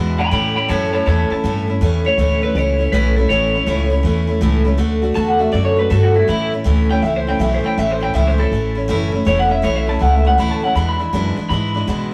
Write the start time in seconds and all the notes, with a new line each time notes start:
Already playing: E2 B2 E3 G#3 D4 E4
0.18 E3 G#3 D4 E4 G#5 B5
0.31 A2 E3 A3 C#4 E4 G5 B5
0.55 A3 C#4 E4 G5 B5
0.69 F#2 A2 E3 A3 C#4 E4 C#5 A5
0.93 A3 C#4 E4 C#5 A5
1.06 E2 E3 A3 C#4 E4 C#5 A5
1.30 A3 C#4 E4 A5, muted upright bass stroke
1.44 G2 A2 E3 A3 C#4 E4
1.68 A3 C#4 E4
1.81 E2 A2 E3 A3 C#4 E4
2.04 A3 C#4 E4 C#5
2.18 D2 A2 E3 A3 C#4 E4
2.42 A3 C#4 E4 B4
2.55 C#2 E3 A3 C#4 E4 C#5
2.79 A3 C#4 E4
2.92 B1 A2 E3 A3 C#4 E4 B4
3.15 C#4 E4 A4
3.20 A3
3.29 A1 A2 E3 A3 C#4 E4 C#5
3.54 A3 C#4 E4
3.66 C#2 A2 E3 A3 C#4 E4
3.90 A3 C#4 E4
4.03 E2 E3 A3 C#4 E4
4.27 A3 C#4 E4
4.41 C#2 A2 E3 A3 C#4 E4
4.64 A3 C#4 E4
4.77 D2 D3 A3 D4 F#4
5.02 A3 D4 F#4
5.14 E2 D3 A3 D4 F#4 A5
5.28 F#5
5.39 A3 D4 F#4 E5
5.52 F#2 D3 A3 D4 F#4 D5
5.65 C#5
5.76 A3 D4 F#4 B4
5.90 G2 D3 A3 D4 F#4 A4
6.03 F#4
6.14 A3 D4 E4 F#4
6.28 A2 E3 A3 C#4 E4
6.52 A3 C#4 E4
6.64 D2 A2 E3 A3 C#4 E4
6.90 A3 C#4 E4 G5
7.02 C#2 E3 A3 C#4 E4 E5
7.16 C5
7.27 A3 C#4 E4 G5
7.39 B1 A2 E3 A3 C#4 E4 E5
7.54 C5
7.64 A3 C#4 E4 G5, muted upright bass stroke
7.78 A1 A2 E3 A3 C#4 E4 E5
7.91 C5
8.00 A3 C#4 E4 G5
8.14 C#2 A2 E3 A3 C#4 E4 E5
8.27 C5
8.38 A3 C#4 E4 A4
8.52 A1 E3 A3 C#4 E4
8.75 A3 C#4 E4
8.88 F#1 A2 E3 A3 C#4 E4
9.12 A3 C#4 E4
9.25 E1 A2 E3 A3 C#4 E4 C#5
9.39 F#5
9.49 A3 C#4 E4 E5
9.62 B1 A2 E3 A3 C#4 E4 C#5
9.76 E5
9.87 A3 C#4 E4 A5
9.99 C#2 E3 A3 C#4 E4 F#5
10.15 E5
10.25 A3 C#4 E4 F#5
10.38 D2 A2 E3 A3 C#4 E4 B5
10.51 A5
10.62 A3 C#4 E4 F#5
10.75 E2 B2 E3 G#3 D4 E4 B5
10.89 B5
10.99 E3 G#3 D4 E4
11.13 E2 F#2 B2 E3 G#3 D4 E4
11.36 E3 G#3 D4 E4, muted upright bass stroke
11.49 G#2 E3 G#3 D4 E4 B5
11.74 E3 G#3 D4 E4
11.87 E2 B2 E3 G#3 D4 E4